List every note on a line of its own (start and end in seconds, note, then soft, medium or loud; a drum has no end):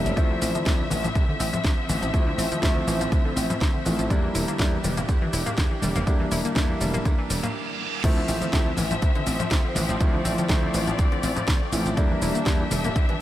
0.00 0.14 G3 medium
0.00 0.14 A#3 medium
0.00 0.13 D4 medium
0.00 0.14 D4 medium
0.00 0.15 E4 medium
0.00 0.13 G4 medium
0.00 7.50 E5 medium
0.05 0.13 E1 medium
0.05 0.11 D3 medium
0.05 closed hi-hat medium
0.05 shaker soft
0.16 0.34 D2 medium
0.16 0.24 C3 medium
0.16 0.63 F3 loud
0.16 4.07 F3 medium
0.16 0.63 A3 medium
0.16 0.64 C4 medium
0.16 4.07 C4 medium
0.16 0.64 E4 loud
0.16 kick loud
0.16 closed hi-hat medium
0.16 shaker soft
0.30 0.36 D3 loud
0.42 0.50 A1 medium
0.42 0.48 C4 loud
0.42 open hi-hat loud
0.42 shaker medium
0.55 0.61 F3 loud
0.55 closed hi-hat medium
0.55 high conga medium
0.55 shaker soft
0.66 0.83 D2 medium
0.66 0.70 C3 medium
0.66 0.81 F3 medium
0.66 0.81 A3 medium
0.66 0.82 C4 medium
0.66 0.82 E4 loud
0.66 kick loud
0.66 snare loud
0.66 closed hi-hat medium
0.66 shaker soft
0.80 0.85 D3 medium
0.90 1.08 A1 medium
0.90 0.95 E3 loud
0.90 open hi-hat medium
0.90 high conga medium
0.90 shaker medium
1.04 1.07 F3 loud
1.04 closed hi-hat medium
1.04 low conga medium
1.04 shaker soft
1.15 1.24 D2 medium
1.15 1.22 C3 medium
1.15 kick loud
1.15 closed hi-hat soft
1.15 shaker soft
1.28 1.34 D3 loud
1.28 high conga medium
1.40 1.49 A1 medium
1.40 1.46 C4 loud
1.40 open hi-hat loud
1.40 shaker medium
1.53 1.59 F3 loud
1.53 closed hi-hat medium
1.53 low conga medium
1.53 shaker soft
1.64 1.73 D2 loud
1.64 1.68 C3 medium
1.64 kick loud
1.64 snare loud
1.64 closed hi-hat soft
1.64 shaker soft
1.77 1.83 D3 medium
1.89 1.98 A1 medium
1.89 1.93 E3 loud
1.89 open hi-hat medium
1.89 high conga medium
1.89 shaker medium
2.02 2.10 A1 medium
2.02 2.06 F3 loud
2.02 closed hi-hat medium
2.02 shaker soft
2.13 2.31 D2 medium
2.13 2.20 C3 medium
2.13 2.60 F3 medium
2.13 2.60 A3 medium
2.13 2.60 C4 medium
2.13 2.60 E4 medium
2.13 kick loud
2.13 closed hi-hat medium
2.13 shaker soft
2.27 2.33 D3 loud
2.38 2.47 A1 loud
2.38 2.45 C4 loud
2.38 open hi-hat loud
2.38 shaker medium
2.51 2.57 F3 loud
2.51 muted slap bass stroke soft
2.51 closed hi-hat medium
2.51 high conga medium
2.51 shaker soft
2.62 2.80 D2 loud
2.62 2.67 C3 medium
2.62 3.83 F3 loud
2.62 3.83 A3 medium
2.62 3.83 C4 medium
2.62 3.84 E4 loud
2.62 kick loud
2.62 snare loud
2.62 closed hi-hat medium
2.62 shaker soft
2.76 2.82 D3 medium
2.87 3.04 A1 medium
2.87 2.91 E3 loud
2.87 open hi-hat medium
2.87 shaker medium
3.01 3.04 F3 loud
3.01 closed hi-hat medium
3.01 low conga medium
3.01 shaker soft
3.12 3.21 D2 medium
3.12 3.19 C3 medium
3.12 kick loud
3.12 closed hi-hat soft
3.12 shaker soft
3.25 3.31 D3 loud
3.36 3.45 A1 medium
3.36 3.43 C4 loud
3.36 open hi-hat loud
3.36 shaker medium
3.50 3.56 F3 loud
3.50 closed hi-hat medium
3.50 low conga medium
3.50 shaker soft
3.61 3.70 D2 loud
3.61 3.65 C3 medium
3.61 kick loud
3.61 snare loud
3.61 closed hi-hat soft
3.61 shaker soft
3.74 3.80 D3 medium
3.86 3.95 A1 medium
3.86 3.90 E3 loud
3.86 4.08 F3 medium
3.86 4.08 A3 medium
3.86 4.08 C4 medium
3.86 4.08 E4 medium
3.86 open hi-hat medium
3.86 shaker medium
3.99 4.07 A1 medium
3.99 4.02 F3 loud
3.99 closed hi-hat medium
3.99 shaker soft
4.10 4.27 E2 loud
4.10 4.17 D3 medium
4.10 4.56 G3 loud
4.10 4.57 A#3 medium
4.10 7.51 D4 medium
4.10 4.57 D4 medium
4.10 4.57 E4 loud
4.10 7.51 G4 medium
4.10 kick loud
4.10 closed hi-hat medium
4.10 shaker soft
4.24 4.29 E3 loud
4.35 4.44 E1 loud
4.35 4.42 E4 loud
4.35 open hi-hat loud
4.35 shaker medium
4.48 4.54 A#3 loud
4.48 closed hi-hat medium
4.48 high conga medium
4.48 shaker soft
4.59 4.76 E2 loud
4.59 4.64 D3 medium
4.59 4.75 G3 medium
4.59 4.75 A#3 medium
4.59 4.75 D4 medium
4.59 4.75 E4 loud
4.59 kick loud
4.59 snare loud
4.59 closed hi-hat medium
4.59 shaker soft
4.73 4.79 E3 medium
4.84 5.01 E1 medium
4.84 4.88 G3 loud
4.84 open hi-hat medium
4.84 high conga medium
4.84 shaker medium
4.97 5.01 A#3 loud
4.97 closed hi-hat medium
4.97 low conga medium
4.97 shaker soft
5.09 5.17 E2 medium
5.09 5.15 D3 medium
5.09 kick loud
5.09 closed hi-hat medium
5.09 shaker soft
5.22 5.28 E3 loud
5.22 high conga medium
5.33 5.42 E1 medium
5.33 5.40 E4 loud
5.33 open hi-hat loud
5.33 shaker medium
5.46 5.52 A#3 loud
5.46 closed hi-hat medium
5.46 low conga medium
5.46 shaker soft
5.58 5.67 E2 loud
5.58 5.62 D3 medium
5.58 kick loud
5.58 snare loud
5.58 closed hi-hat medium
5.58 shaker soft
5.71 5.77 E3 medium
5.82 5.91 E1 medium
5.82 5.86 G3 loud
5.82 open hi-hat medium
5.82 high conga medium
5.82 shaker medium
5.96 6.03 E1 medium
5.96 5.99 A#3 loud
5.96 closed hi-hat medium
5.96 shaker soft
6.06 6.24 E2 loud
6.06 6.14 D3 medium
6.06 6.53 G3 medium
6.06 6.53 A#3 medium
6.06 6.53 D4 medium
6.06 6.54 E4 medium
6.06 kick loud
6.06 closed hi-hat medium
6.06 shaker soft
6.20 6.26 E3 loud
6.31 6.40 E1 loud
6.31 6.38 E4 loud
6.31 open hi-hat loud
6.31 shaker medium
6.45 6.51 A#3 loud
6.45 closed hi-hat medium
6.45 high conga medium
6.45 shaker soft
6.55 6.73 E2 loud
6.55 6.60 D3 medium
6.55 7.54 G3 medium
6.55 7.54 A#3 medium
6.55 7.55 D4 medium
6.55 7.55 E4 loud
6.55 kick loud
6.55 snare loud
6.55 closed hi-hat medium
6.55 shaker soft
6.69 6.75 E3 medium
6.80 6.98 E1 medium
6.80 6.85 G3 loud
6.80 open hi-hat medium
6.80 high conga medium
6.80 shaker medium
6.93 6.97 A#3 loud
6.93 closed hi-hat medium
6.93 low conga medium
6.93 shaker soft
7.05 7.14 E2 medium
7.05 7.12 D3 medium
7.05 kick loud
7.05 closed hi-hat medium
7.05 reverse cymbal medium
7.05 shaker soft
7.18 7.24 E3 loud
7.30 7.39 E1 medium
7.30 7.37 G3 loud
7.30 open hi-hat loud
7.30 shaker medium
7.43 7.49 A#3 loud
7.43 closed hi-hat medium
7.43 low conga medium
7.43 shaker soft
8.04 8.21 D2 medium
8.04 8.10 C3 medium
8.04 8.50 F3 loud
8.04 11.93 F3 medium
8.04 8.50 A3 medium
8.04 11.93 C4 medium
8.04 8.50 C4 medium
8.04 8.51 E4 loud
8.04 9.99 E5 medium
8.04 kick loud
8.04 closed hi-hat medium
8.04 crash loud
8.04 shaker soft
8.17 8.23 D3 loud
8.28 8.37 A1 loud
8.28 8.35 C4 loud
8.28 open hi-hat loud
8.28 shaker medium
8.41 8.47 F3 loud
8.41 muted slap bass stroke soft
8.41 closed hi-hat medium
8.41 high conga medium
8.41 shaker soft
8.53 8.70 D2 loud
8.53 8.57 C3 medium
8.53 8.68 F3 medium
8.53 8.68 A3 medium
8.53 8.69 C4 medium
8.53 8.69 E4 loud
8.53 kick loud
8.53 snare loud
8.53 closed hi-hat medium
8.53 shaker soft
8.66 8.72 D3 medium
8.77 8.95 A1 medium
8.77 8.82 E3 loud
8.77 open hi-hat medium
8.77 high conga medium
8.77 shaker medium
8.91 8.94 F3 loud
8.91 closed hi-hat medium
8.91 low conga medium
8.91 shaker soft
9.02 9.11 D2 medium
9.02 9.09 C3 medium
9.02 kick loud
9.02 closed hi-hat medium
9.02 shaker soft
9.15 9.21 D3 loud
9.15 closed hi-hat soft
9.15 high conga medium
9.27 9.36 A1 medium
9.27 9.33 C4 loud
9.27 open hi-hat loud
9.27 shaker medium
9.39 9.46 F3 loud
9.39 muted slap bass stroke soft
9.39 closed hi-hat medium
9.39 low conga loud
9.39 shaker soft
9.51 9.60 D2 loud
9.51 9.55 C3 medium
9.51 kick loud
9.51 snare loud
9.51 closed hi-hat medium
9.51 shaker soft
9.65 9.70 D3 medium
9.75 9.85 A1 medium
9.75 9.80 E3 loud
9.75 open hi-hat medium
9.75 high conga medium
9.75 shaker medium
9.89 9.97 A1 medium
9.89 9.93 F3 loud
9.89 closed hi-hat medium
9.89 shaker soft
10.00 10.17 D2 loud
10.00 10.07 C3 medium
10.00 10.47 F3 medium
10.00 10.47 A3 medium
10.00 10.47 C4 medium
10.00 10.47 E4 medium
10.00 11.95 D5 medium
10.00 kick loud
10.00 closed hi-hat medium
10.00 shaker soft
10.14 10.19 D3 loud
10.25 10.34 A1 loud
10.25 10.32 C4 loud
10.25 open hi-hat loud
10.25 shaker medium
10.38 10.44 F3 loud
10.38 closed hi-hat medium
10.38 high conga medium
10.38 shaker soft
10.49 10.67 D2 loud
10.49 10.54 C3 medium
10.49 11.69 F3 loud
10.49 11.70 A3 medium
10.49 11.70 C4 medium
10.49 11.71 E4 loud
10.49 kick loud
10.49 snare loud
10.49 closed hi-hat medium
10.49 shaker soft
10.63 10.69 D3 medium
10.74 10.91 A1 medium
10.74 10.78 E3 loud
10.74 open hi-hat medium
10.74 shaker medium
10.87 10.91 F3 loud
10.87 closed hi-hat medium
10.87 low conga medium
10.87 shaker soft
10.99 11.08 D2 medium
10.99 11.06 C3 medium
10.99 kick loud
10.99 closed hi-hat medium
10.99 shaker soft
11.12 11.18 D3 loud
11.12 closed hi-hat soft
11.23 11.32 A1 medium
11.23 11.30 C4 loud
11.23 open hi-hat loud
11.23 shaker medium
11.36 11.43 F3 loud
11.36 muted slap bass stroke soft
11.36 closed hi-hat medium
11.36 low conga loud
11.36 shaker soft
11.48 11.57 D2 loud
11.48 11.52 C3 medium
11.48 kick loud
11.48 snare loud
11.48 closed hi-hat medium
11.48 shaker soft
11.62 11.67 D3 medium
11.72 11.81 A1 medium
11.72 11.77 E3 loud
11.72 11.94 F3 medium
11.72 11.95 A3 medium
11.72 11.95 C4 medium
11.72 11.95 E4 medium
11.72 open hi-hat loud
11.72 shaker medium
11.86 11.93 A1 medium
11.86 11.89 F3 loud
11.86 closed hi-hat medium
11.86 shaker soft
11.97 12.14 E2 loud
11.97 12.04 D3 medium
11.97 12.43 G3 loud
11.97 12.44 A#3 medium
11.97 12.44 D4 medium
11.97 13.21 D4 medium
11.97 12.44 E4 loud
11.97 13.21 G4 medium
11.97 13.21 E5 medium
11.97 kick loud
11.97 closed hi-hat medium
11.97 shaker soft
12.11 12.16 E3 loud
12.22 12.30 E1 loud
12.22 12.29 E4 loud
12.22 open hi-hat loud
12.22 shaker medium
12.35 12.41 A#3 loud
12.35 closed hi-hat medium
12.35 high conga medium
12.35 shaker soft
12.46 12.63 E2 loud
12.46 12.51 D3 medium
12.46 12.62 G3 medium
12.46 12.62 A#3 medium
12.46 12.62 D4 medium
12.46 12.62 E4 loud
12.46 kick loud
12.46 snare loud
12.46 closed hi-hat medium
12.46 shaker soft
12.60 12.66 E3 medium
12.71 12.88 E1 medium
12.71 12.75 G3 loud
12.71 open hi-hat loud
12.71 high conga medium
12.71 shaker medium
12.84 12.88 A#3 loud
12.84 closed hi-hat medium
12.84 low conga medium
12.84 shaker soft
12.96 13.04 E2 medium
12.96 13.03 D3 medium
12.96 kick loud
12.96 closed hi-hat medium
12.96 shaker soft
13.09 13.15 E3 loud
13.09 closed hi-hat soft
13.09 high conga medium